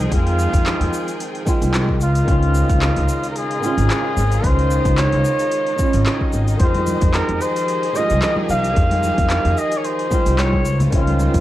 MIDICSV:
0, 0, Header, 1, 6, 480
1, 0, Start_track
1, 0, Key_signature, -4, "minor"
1, 0, Tempo, 540541
1, 102, Time_signature, 4, 2, 24, 8
1, 10127, End_track
2, 0, Start_track
2, 0, Title_t, "Flugelhorn"
2, 0, Program_c, 0, 56
2, 98, Note_on_c, 0, 65, 117
2, 1024, Note_off_c, 0, 65, 0
2, 1794, Note_on_c, 0, 65, 93
2, 2896, Note_off_c, 0, 65, 0
2, 2934, Note_on_c, 0, 70, 73
2, 2991, Note_on_c, 0, 68, 99
2, 3004, Note_off_c, 0, 70, 0
2, 3953, Note_on_c, 0, 72, 115
2, 3966, Note_off_c, 0, 68, 0
2, 4433, Note_on_c, 0, 73, 108
2, 4446, Note_off_c, 0, 72, 0
2, 5627, Note_off_c, 0, 73, 0
2, 5868, Note_on_c, 0, 72, 105
2, 6344, Note_on_c, 0, 70, 99
2, 6357, Note_off_c, 0, 72, 0
2, 6585, Note_on_c, 0, 72, 108
2, 6598, Note_off_c, 0, 70, 0
2, 7074, Note_on_c, 0, 75, 107
2, 7087, Note_off_c, 0, 72, 0
2, 7302, Note_off_c, 0, 75, 0
2, 7308, Note_on_c, 0, 75, 103
2, 7414, Note_off_c, 0, 75, 0
2, 7550, Note_on_c, 0, 77, 119
2, 8511, Note_on_c, 0, 75, 102
2, 8524, Note_off_c, 0, 77, 0
2, 8679, Note_on_c, 0, 73, 74
2, 8693, Note_off_c, 0, 75, 0
2, 8747, Note_on_c, 0, 72, 106
2, 8760, Note_off_c, 0, 73, 0
2, 9226, Note_on_c, 0, 73, 104
2, 9239, Note_off_c, 0, 72, 0
2, 9594, Note_off_c, 0, 73, 0
2, 9714, Note_on_c, 0, 65, 93
2, 10127, Note_off_c, 0, 65, 0
2, 10127, End_track
3, 0, Start_track
3, 0, Title_t, "String section"
3, 0, Program_c, 1, 48
3, 0, Note_on_c, 1, 53, 84
3, 0, Note_on_c, 1, 60, 73
3, 0, Note_on_c, 1, 63, 78
3, 0, Note_on_c, 1, 68, 87
3, 0, Note_on_c, 1, 79, 70
3, 1745, Note_off_c, 1, 63, 0
3, 1745, Note_off_c, 1, 68, 0
3, 1745, Note_off_c, 1, 79, 0
3, 1746, Note_off_c, 1, 53, 0
3, 1746, Note_off_c, 1, 60, 0
3, 1783, Note_on_c, 1, 49, 75
3, 1787, Note_on_c, 1, 56, 74
3, 1787, Note_on_c, 1, 63, 75
3, 1787, Note_on_c, 1, 65, 90
3, 1788, Note_on_c, 1, 75, 72
3, 5827, Note_off_c, 1, 49, 0
3, 5829, Note_off_c, 1, 56, 0
3, 5829, Note_off_c, 1, 65, 0
3, 5862, Note_on_c, 1, 53, 86
3, 5864, Note_on_c, 1, 67, 72
3, 5864, Note_on_c, 1, 68, 90
3, 9426, Note_off_c, 1, 53, 0
3, 9427, Note_off_c, 1, 67, 0
3, 9427, Note_off_c, 1, 68, 0
3, 9429, Note_off_c, 1, 63, 0
3, 9429, Note_off_c, 1, 75, 0
3, 9460, Note_on_c, 1, 63, 75
3, 9461, Note_on_c, 1, 49, 78
3, 9461, Note_on_c, 1, 72, 71
3, 9464, Note_on_c, 1, 65, 90
3, 9465, Note_on_c, 1, 56, 76
3, 10127, Note_off_c, 1, 49, 0
3, 10127, Note_off_c, 1, 56, 0
3, 10127, Note_off_c, 1, 63, 0
3, 10127, Note_off_c, 1, 65, 0
3, 10127, Note_off_c, 1, 72, 0
3, 10127, End_track
4, 0, Start_track
4, 0, Title_t, "Nylon-string guitar"
4, 0, Program_c, 2, 24
4, 77, Note_on_c, 2, 51, 85
4, 93, Note_on_c, 2, 56, 76
4, 109, Note_on_c, 2, 60, 79
4, 125, Note_on_c, 2, 65, 103
4, 1263, Note_off_c, 2, 51, 0
4, 1271, Note_off_c, 2, 56, 0
4, 1279, Note_off_c, 2, 60, 0
4, 1287, Note_off_c, 2, 65, 0
4, 1289, Note_on_c, 2, 51, 92
4, 1301, Note_on_c, 2, 56, 80
4, 1306, Note_on_c, 2, 60, 82
4, 1317, Note_on_c, 2, 65, 96
4, 1762, Note_off_c, 2, 51, 0
4, 1768, Note_off_c, 2, 56, 0
4, 1771, Note_off_c, 2, 60, 0
4, 1776, Note_off_c, 2, 65, 0
4, 1996, Note_on_c, 2, 51, 83
4, 2014, Note_on_c, 2, 60, 77
4, 2031, Note_on_c, 2, 61, 78
4, 2044, Note_on_c, 2, 65, 96
4, 3183, Note_off_c, 2, 51, 0
4, 3191, Note_off_c, 2, 60, 0
4, 3195, Note_on_c, 2, 51, 84
4, 3200, Note_off_c, 2, 61, 0
4, 3207, Note_off_c, 2, 65, 0
4, 3213, Note_on_c, 2, 60, 81
4, 3229, Note_on_c, 2, 61, 78
4, 3245, Note_on_c, 2, 65, 105
4, 3902, Note_off_c, 2, 51, 0
4, 3911, Note_off_c, 2, 60, 0
4, 3913, Note_on_c, 2, 51, 85
4, 3919, Note_off_c, 2, 61, 0
4, 3927, Note_off_c, 2, 65, 0
4, 3928, Note_on_c, 2, 63, 84
4, 3946, Note_on_c, 2, 61, 82
4, 3962, Note_on_c, 2, 65, 96
4, 5101, Note_off_c, 2, 51, 0
4, 5109, Note_off_c, 2, 63, 0
4, 5117, Note_on_c, 2, 51, 90
4, 5118, Note_off_c, 2, 61, 0
4, 5126, Note_off_c, 2, 65, 0
4, 5135, Note_on_c, 2, 63, 78
4, 5150, Note_on_c, 2, 61, 84
4, 5170, Note_on_c, 2, 65, 94
4, 5823, Note_off_c, 2, 51, 0
4, 5832, Note_off_c, 2, 63, 0
4, 5835, Note_on_c, 2, 51, 85
4, 5840, Note_off_c, 2, 61, 0
4, 5849, Note_on_c, 2, 56, 78
4, 5850, Note_off_c, 2, 65, 0
4, 5867, Note_on_c, 2, 60, 76
4, 5886, Note_on_c, 2, 65, 97
4, 7022, Note_off_c, 2, 51, 0
4, 7029, Note_off_c, 2, 56, 0
4, 7037, Note_on_c, 2, 51, 90
4, 7038, Note_off_c, 2, 60, 0
4, 7048, Note_off_c, 2, 65, 0
4, 7052, Note_on_c, 2, 56, 82
4, 7073, Note_on_c, 2, 60, 80
4, 7089, Note_on_c, 2, 65, 95
4, 7741, Note_off_c, 2, 51, 0
4, 7751, Note_off_c, 2, 56, 0
4, 7752, Note_on_c, 2, 51, 89
4, 7761, Note_off_c, 2, 60, 0
4, 7767, Note_on_c, 2, 56, 78
4, 7769, Note_off_c, 2, 65, 0
4, 7785, Note_on_c, 2, 60, 87
4, 7801, Note_on_c, 2, 65, 97
4, 8940, Note_off_c, 2, 51, 0
4, 8948, Note_off_c, 2, 56, 0
4, 8957, Note_off_c, 2, 60, 0
4, 8965, Note_off_c, 2, 65, 0
4, 8970, Note_on_c, 2, 51, 86
4, 8978, Note_on_c, 2, 56, 78
4, 8988, Note_on_c, 2, 60, 84
4, 8996, Note_on_c, 2, 65, 99
4, 9443, Note_off_c, 2, 51, 0
4, 9447, Note_off_c, 2, 56, 0
4, 9452, Note_off_c, 2, 60, 0
4, 9456, Note_off_c, 2, 65, 0
4, 9679, Note_on_c, 2, 51, 91
4, 9698, Note_on_c, 2, 60, 85
4, 9713, Note_on_c, 2, 61, 84
4, 9732, Note_on_c, 2, 65, 99
4, 10127, Note_off_c, 2, 51, 0
4, 10127, Note_off_c, 2, 60, 0
4, 10127, Note_off_c, 2, 61, 0
4, 10127, Note_off_c, 2, 65, 0
4, 10127, End_track
5, 0, Start_track
5, 0, Title_t, "Upright bass"
5, 0, Program_c, 3, 32
5, 103, Note_on_c, 3, 41, 93
5, 418, Note_off_c, 3, 41, 0
5, 474, Note_on_c, 3, 41, 99
5, 644, Note_off_c, 3, 41, 0
5, 714, Note_on_c, 3, 41, 83
5, 794, Note_off_c, 3, 41, 0
5, 1433, Note_on_c, 3, 36, 83
5, 1784, Note_off_c, 3, 36, 0
5, 1784, Note_on_c, 3, 37, 85
5, 1965, Note_off_c, 3, 37, 0
5, 2024, Note_on_c, 3, 37, 100
5, 2338, Note_off_c, 3, 37, 0
5, 2395, Note_on_c, 3, 37, 106
5, 2565, Note_off_c, 3, 37, 0
5, 2636, Note_on_c, 3, 37, 83
5, 2715, Note_off_c, 3, 37, 0
5, 3353, Note_on_c, 3, 32, 90
5, 3433, Note_off_c, 3, 32, 0
5, 3702, Note_on_c, 3, 32, 80
5, 3884, Note_off_c, 3, 32, 0
5, 3940, Note_on_c, 3, 37, 95
5, 4256, Note_off_c, 3, 37, 0
5, 4310, Note_on_c, 3, 37, 102
5, 4482, Note_off_c, 3, 37, 0
5, 4556, Note_on_c, 3, 37, 81
5, 4635, Note_off_c, 3, 37, 0
5, 5275, Note_on_c, 3, 32, 93
5, 5354, Note_off_c, 3, 32, 0
5, 5623, Note_on_c, 3, 32, 78
5, 5805, Note_off_c, 3, 32, 0
5, 5863, Note_on_c, 3, 41, 93
5, 6178, Note_off_c, 3, 41, 0
5, 6237, Note_on_c, 3, 41, 102
5, 6406, Note_off_c, 3, 41, 0
5, 6476, Note_on_c, 3, 41, 84
5, 6555, Note_off_c, 3, 41, 0
5, 7198, Note_on_c, 3, 36, 91
5, 7276, Note_off_c, 3, 36, 0
5, 7541, Note_on_c, 3, 36, 77
5, 7724, Note_off_c, 3, 36, 0
5, 7782, Note_on_c, 3, 41, 97
5, 8098, Note_off_c, 3, 41, 0
5, 8151, Note_on_c, 3, 41, 100
5, 8323, Note_off_c, 3, 41, 0
5, 8390, Note_on_c, 3, 41, 86
5, 8472, Note_off_c, 3, 41, 0
5, 9112, Note_on_c, 3, 36, 94
5, 9466, Note_off_c, 3, 36, 0
5, 9466, Note_on_c, 3, 37, 84
5, 9646, Note_off_c, 3, 37, 0
5, 9703, Note_on_c, 3, 37, 101
5, 10018, Note_off_c, 3, 37, 0
5, 10071, Note_on_c, 3, 37, 101
5, 10127, Note_off_c, 3, 37, 0
5, 10127, End_track
6, 0, Start_track
6, 0, Title_t, "Drums"
6, 102, Note_on_c, 9, 36, 115
6, 103, Note_on_c, 9, 46, 53
6, 104, Note_on_c, 9, 82, 31
6, 191, Note_off_c, 9, 36, 0
6, 192, Note_off_c, 9, 46, 0
6, 192, Note_off_c, 9, 82, 0
6, 236, Note_on_c, 9, 46, 33
6, 325, Note_off_c, 9, 46, 0
6, 346, Note_on_c, 9, 82, 75
6, 435, Note_off_c, 9, 82, 0
6, 473, Note_on_c, 9, 36, 108
6, 477, Note_on_c, 9, 46, 48
6, 477, Note_on_c, 9, 82, 47
6, 562, Note_off_c, 9, 36, 0
6, 565, Note_off_c, 9, 46, 0
6, 566, Note_off_c, 9, 82, 0
6, 587, Note_on_c, 9, 39, 106
6, 587, Note_on_c, 9, 46, 53
6, 587, Note_on_c, 9, 82, 34
6, 676, Note_off_c, 9, 39, 0
6, 676, Note_off_c, 9, 46, 0
6, 676, Note_off_c, 9, 82, 0
6, 718, Note_on_c, 9, 46, 33
6, 806, Note_off_c, 9, 46, 0
6, 827, Note_on_c, 9, 82, 81
6, 916, Note_off_c, 9, 82, 0
6, 958, Note_on_c, 9, 46, 44
6, 959, Note_on_c, 9, 82, 47
6, 1047, Note_off_c, 9, 46, 0
6, 1047, Note_off_c, 9, 82, 0
6, 1068, Note_on_c, 9, 46, 51
6, 1068, Note_on_c, 9, 82, 32
6, 1157, Note_off_c, 9, 46, 0
6, 1157, Note_off_c, 9, 82, 0
6, 1198, Note_on_c, 9, 46, 31
6, 1287, Note_off_c, 9, 46, 0
6, 1303, Note_on_c, 9, 36, 107
6, 1305, Note_on_c, 9, 82, 84
6, 1392, Note_off_c, 9, 36, 0
6, 1394, Note_off_c, 9, 82, 0
6, 1439, Note_on_c, 9, 46, 47
6, 1439, Note_on_c, 9, 82, 48
6, 1527, Note_off_c, 9, 46, 0
6, 1528, Note_off_c, 9, 82, 0
6, 1544, Note_on_c, 9, 39, 110
6, 1544, Note_on_c, 9, 46, 60
6, 1545, Note_on_c, 9, 82, 34
6, 1633, Note_off_c, 9, 39, 0
6, 1633, Note_off_c, 9, 46, 0
6, 1634, Note_off_c, 9, 82, 0
6, 1675, Note_on_c, 9, 36, 67
6, 1764, Note_off_c, 9, 36, 0
6, 1782, Note_on_c, 9, 82, 74
6, 1871, Note_off_c, 9, 82, 0
6, 1911, Note_on_c, 9, 46, 43
6, 1911, Note_on_c, 9, 82, 43
6, 2000, Note_off_c, 9, 46, 0
6, 2000, Note_off_c, 9, 82, 0
6, 2024, Note_on_c, 9, 36, 111
6, 2024, Note_on_c, 9, 46, 51
6, 2024, Note_on_c, 9, 82, 33
6, 2112, Note_off_c, 9, 36, 0
6, 2112, Note_off_c, 9, 46, 0
6, 2113, Note_off_c, 9, 82, 0
6, 2154, Note_on_c, 9, 46, 31
6, 2243, Note_off_c, 9, 46, 0
6, 2261, Note_on_c, 9, 82, 76
6, 2350, Note_off_c, 9, 82, 0
6, 2394, Note_on_c, 9, 36, 107
6, 2394, Note_on_c, 9, 46, 43
6, 2394, Note_on_c, 9, 82, 47
6, 2482, Note_off_c, 9, 36, 0
6, 2483, Note_off_c, 9, 46, 0
6, 2483, Note_off_c, 9, 82, 0
6, 2502, Note_on_c, 9, 39, 107
6, 2502, Note_on_c, 9, 46, 51
6, 2502, Note_on_c, 9, 82, 36
6, 2591, Note_off_c, 9, 39, 0
6, 2591, Note_off_c, 9, 46, 0
6, 2591, Note_off_c, 9, 82, 0
6, 2633, Note_on_c, 9, 46, 32
6, 2722, Note_off_c, 9, 46, 0
6, 2742, Note_on_c, 9, 82, 78
6, 2831, Note_off_c, 9, 82, 0
6, 2876, Note_on_c, 9, 46, 42
6, 2876, Note_on_c, 9, 82, 43
6, 2964, Note_off_c, 9, 46, 0
6, 2965, Note_off_c, 9, 82, 0
6, 2983, Note_on_c, 9, 46, 53
6, 2984, Note_on_c, 9, 82, 34
6, 3072, Note_off_c, 9, 46, 0
6, 3072, Note_off_c, 9, 82, 0
6, 3116, Note_on_c, 9, 46, 30
6, 3204, Note_off_c, 9, 46, 0
6, 3227, Note_on_c, 9, 82, 78
6, 3315, Note_off_c, 9, 82, 0
6, 3357, Note_on_c, 9, 46, 44
6, 3357, Note_on_c, 9, 82, 46
6, 3445, Note_off_c, 9, 46, 0
6, 3446, Note_off_c, 9, 82, 0
6, 3466, Note_on_c, 9, 39, 106
6, 3466, Note_on_c, 9, 46, 55
6, 3467, Note_on_c, 9, 82, 38
6, 3555, Note_off_c, 9, 39, 0
6, 3555, Note_off_c, 9, 46, 0
6, 3555, Note_off_c, 9, 82, 0
6, 3706, Note_on_c, 9, 82, 76
6, 3794, Note_off_c, 9, 82, 0
6, 3834, Note_on_c, 9, 46, 42
6, 3834, Note_on_c, 9, 82, 48
6, 3923, Note_off_c, 9, 46, 0
6, 3923, Note_off_c, 9, 82, 0
6, 3941, Note_on_c, 9, 36, 122
6, 3944, Note_on_c, 9, 46, 53
6, 3944, Note_on_c, 9, 82, 36
6, 4029, Note_off_c, 9, 36, 0
6, 4032, Note_off_c, 9, 46, 0
6, 4033, Note_off_c, 9, 82, 0
6, 4076, Note_on_c, 9, 46, 29
6, 4164, Note_off_c, 9, 46, 0
6, 4182, Note_on_c, 9, 82, 85
6, 4271, Note_off_c, 9, 82, 0
6, 4311, Note_on_c, 9, 36, 109
6, 4311, Note_on_c, 9, 46, 44
6, 4311, Note_on_c, 9, 82, 48
6, 4399, Note_off_c, 9, 46, 0
6, 4400, Note_off_c, 9, 36, 0
6, 4400, Note_off_c, 9, 82, 0
6, 4421, Note_on_c, 9, 39, 105
6, 4421, Note_on_c, 9, 46, 54
6, 4422, Note_on_c, 9, 82, 36
6, 4510, Note_off_c, 9, 39, 0
6, 4510, Note_off_c, 9, 46, 0
6, 4511, Note_off_c, 9, 82, 0
6, 4552, Note_on_c, 9, 46, 30
6, 4641, Note_off_c, 9, 46, 0
6, 4662, Note_on_c, 9, 82, 86
6, 4751, Note_off_c, 9, 82, 0
6, 4790, Note_on_c, 9, 46, 43
6, 4790, Note_on_c, 9, 82, 47
6, 4879, Note_off_c, 9, 46, 0
6, 4879, Note_off_c, 9, 82, 0
6, 4899, Note_on_c, 9, 46, 53
6, 4899, Note_on_c, 9, 82, 34
6, 4987, Note_off_c, 9, 46, 0
6, 4988, Note_off_c, 9, 82, 0
6, 5032, Note_on_c, 9, 46, 27
6, 5120, Note_off_c, 9, 46, 0
6, 5138, Note_on_c, 9, 82, 85
6, 5142, Note_on_c, 9, 36, 106
6, 5227, Note_off_c, 9, 82, 0
6, 5231, Note_off_c, 9, 36, 0
6, 5268, Note_on_c, 9, 46, 41
6, 5268, Note_on_c, 9, 82, 48
6, 5357, Note_off_c, 9, 46, 0
6, 5357, Note_off_c, 9, 82, 0
6, 5380, Note_on_c, 9, 39, 98
6, 5380, Note_on_c, 9, 46, 53
6, 5380, Note_on_c, 9, 82, 33
6, 5468, Note_off_c, 9, 39, 0
6, 5468, Note_off_c, 9, 46, 0
6, 5469, Note_off_c, 9, 82, 0
6, 5513, Note_on_c, 9, 36, 63
6, 5602, Note_off_c, 9, 36, 0
6, 5618, Note_on_c, 9, 82, 73
6, 5707, Note_off_c, 9, 82, 0
6, 5753, Note_on_c, 9, 46, 39
6, 5753, Note_on_c, 9, 82, 46
6, 5842, Note_off_c, 9, 46, 0
6, 5842, Note_off_c, 9, 82, 0
6, 5859, Note_on_c, 9, 46, 51
6, 5859, Note_on_c, 9, 82, 32
6, 5863, Note_on_c, 9, 36, 116
6, 5947, Note_off_c, 9, 46, 0
6, 5948, Note_off_c, 9, 82, 0
6, 5952, Note_off_c, 9, 36, 0
6, 5991, Note_on_c, 9, 46, 31
6, 5997, Note_on_c, 9, 63, 85
6, 6080, Note_off_c, 9, 46, 0
6, 6086, Note_off_c, 9, 63, 0
6, 6099, Note_on_c, 9, 82, 76
6, 6107, Note_on_c, 9, 63, 88
6, 6187, Note_off_c, 9, 82, 0
6, 6196, Note_off_c, 9, 63, 0
6, 6230, Note_on_c, 9, 46, 44
6, 6230, Note_on_c, 9, 82, 44
6, 6234, Note_on_c, 9, 36, 111
6, 6318, Note_off_c, 9, 46, 0
6, 6319, Note_off_c, 9, 82, 0
6, 6323, Note_off_c, 9, 36, 0
6, 6340, Note_on_c, 9, 39, 91
6, 6340, Note_on_c, 9, 46, 55
6, 6340, Note_on_c, 9, 82, 34
6, 6429, Note_off_c, 9, 39, 0
6, 6429, Note_off_c, 9, 46, 0
6, 6429, Note_off_c, 9, 82, 0
6, 6471, Note_on_c, 9, 46, 32
6, 6560, Note_off_c, 9, 46, 0
6, 6581, Note_on_c, 9, 82, 82
6, 6670, Note_off_c, 9, 82, 0
6, 6715, Note_on_c, 9, 46, 44
6, 6715, Note_on_c, 9, 82, 43
6, 6803, Note_off_c, 9, 46, 0
6, 6804, Note_off_c, 9, 82, 0
6, 6821, Note_on_c, 9, 46, 50
6, 6821, Note_on_c, 9, 82, 33
6, 6910, Note_off_c, 9, 46, 0
6, 6910, Note_off_c, 9, 82, 0
6, 6952, Note_on_c, 9, 46, 28
6, 7041, Note_off_c, 9, 46, 0
6, 7061, Note_on_c, 9, 82, 79
6, 7150, Note_off_c, 9, 82, 0
6, 7191, Note_on_c, 9, 46, 42
6, 7191, Note_on_c, 9, 82, 45
6, 7280, Note_off_c, 9, 46, 0
6, 7280, Note_off_c, 9, 82, 0
6, 7299, Note_on_c, 9, 39, 101
6, 7299, Note_on_c, 9, 46, 54
6, 7300, Note_on_c, 9, 82, 36
6, 7388, Note_off_c, 9, 39, 0
6, 7388, Note_off_c, 9, 46, 0
6, 7388, Note_off_c, 9, 82, 0
6, 7428, Note_on_c, 9, 63, 100
6, 7517, Note_off_c, 9, 63, 0
6, 7541, Note_on_c, 9, 82, 74
6, 7543, Note_on_c, 9, 63, 97
6, 7630, Note_off_c, 9, 82, 0
6, 7632, Note_off_c, 9, 63, 0
6, 7674, Note_on_c, 9, 46, 42
6, 7674, Note_on_c, 9, 82, 43
6, 7762, Note_off_c, 9, 46, 0
6, 7763, Note_off_c, 9, 82, 0
6, 7780, Note_on_c, 9, 46, 52
6, 7781, Note_on_c, 9, 82, 31
6, 7782, Note_on_c, 9, 36, 109
6, 7869, Note_off_c, 9, 46, 0
6, 7869, Note_off_c, 9, 82, 0
6, 7871, Note_off_c, 9, 36, 0
6, 7911, Note_on_c, 9, 46, 31
6, 7911, Note_on_c, 9, 63, 90
6, 8000, Note_off_c, 9, 46, 0
6, 8000, Note_off_c, 9, 63, 0
6, 8018, Note_on_c, 9, 82, 69
6, 8021, Note_on_c, 9, 63, 80
6, 8107, Note_off_c, 9, 82, 0
6, 8109, Note_off_c, 9, 63, 0
6, 8151, Note_on_c, 9, 46, 42
6, 8151, Note_on_c, 9, 82, 41
6, 8152, Note_on_c, 9, 36, 99
6, 8240, Note_off_c, 9, 46, 0
6, 8240, Note_off_c, 9, 82, 0
6, 8241, Note_off_c, 9, 36, 0
6, 8256, Note_on_c, 9, 39, 99
6, 8256, Note_on_c, 9, 46, 56
6, 8256, Note_on_c, 9, 82, 33
6, 8345, Note_off_c, 9, 39, 0
6, 8345, Note_off_c, 9, 46, 0
6, 8345, Note_off_c, 9, 82, 0
6, 8391, Note_on_c, 9, 46, 33
6, 8480, Note_off_c, 9, 46, 0
6, 8502, Note_on_c, 9, 82, 74
6, 8591, Note_off_c, 9, 82, 0
6, 8628, Note_on_c, 9, 46, 45
6, 8628, Note_on_c, 9, 82, 43
6, 8716, Note_off_c, 9, 46, 0
6, 8717, Note_off_c, 9, 82, 0
6, 8742, Note_on_c, 9, 46, 52
6, 8742, Note_on_c, 9, 82, 32
6, 8830, Note_off_c, 9, 46, 0
6, 8831, Note_off_c, 9, 82, 0
6, 8872, Note_on_c, 9, 46, 31
6, 8960, Note_off_c, 9, 46, 0
6, 8977, Note_on_c, 9, 63, 58
6, 8980, Note_on_c, 9, 82, 77
6, 8982, Note_on_c, 9, 36, 101
6, 9066, Note_off_c, 9, 63, 0
6, 9069, Note_off_c, 9, 82, 0
6, 9071, Note_off_c, 9, 36, 0
6, 9112, Note_on_c, 9, 46, 44
6, 9112, Note_on_c, 9, 82, 43
6, 9201, Note_off_c, 9, 46, 0
6, 9201, Note_off_c, 9, 82, 0
6, 9222, Note_on_c, 9, 39, 97
6, 9222, Note_on_c, 9, 46, 58
6, 9223, Note_on_c, 9, 82, 34
6, 9311, Note_off_c, 9, 39, 0
6, 9311, Note_off_c, 9, 46, 0
6, 9311, Note_off_c, 9, 82, 0
6, 9348, Note_on_c, 9, 63, 88
6, 9352, Note_on_c, 9, 36, 62
6, 9437, Note_off_c, 9, 63, 0
6, 9441, Note_off_c, 9, 36, 0
6, 9459, Note_on_c, 9, 82, 67
6, 9548, Note_off_c, 9, 82, 0
6, 9589, Note_on_c, 9, 64, 86
6, 9592, Note_on_c, 9, 46, 46
6, 9593, Note_on_c, 9, 82, 43
6, 9678, Note_off_c, 9, 64, 0
6, 9681, Note_off_c, 9, 46, 0
6, 9681, Note_off_c, 9, 82, 0
6, 9700, Note_on_c, 9, 46, 56
6, 9701, Note_on_c, 9, 82, 32
6, 9702, Note_on_c, 9, 36, 113
6, 9789, Note_off_c, 9, 46, 0
6, 9789, Note_off_c, 9, 82, 0
6, 9791, Note_off_c, 9, 36, 0
6, 9833, Note_on_c, 9, 46, 32
6, 9833, Note_on_c, 9, 63, 82
6, 9922, Note_off_c, 9, 46, 0
6, 9922, Note_off_c, 9, 63, 0
6, 9941, Note_on_c, 9, 82, 70
6, 9944, Note_on_c, 9, 63, 72
6, 10029, Note_off_c, 9, 82, 0
6, 10033, Note_off_c, 9, 63, 0
6, 10071, Note_on_c, 9, 46, 46
6, 10071, Note_on_c, 9, 82, 42
6, 10072, Note_on_c, 9, 36, 99
6, 10127, Note_off_c, 9, 36, 0
6, 10127, Note_off_c, 9, 46, 0
6, 10127, Note_off_c, 9, 82, 0
6, 10127, End_track
0, 0, End_of_file